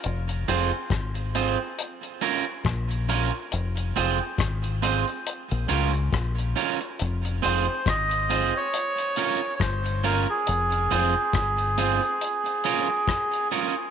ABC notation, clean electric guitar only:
X:1
M:4/4
L:1/8
Q:"Swing 16ths" 1/4=69
K:Fm
V:1 name="Clean electric guitar"
z [CFAc] z [CFAc] z [DFBd] z [DFBd] | z [CFAc] z [CFAc] z [DFBd] z [DFBd] | z [CFAc] z [CFAc] z [DFBd] z [DFBd] | z [CFAc] z [CFAc] z [DFBd] z [DFBd] |]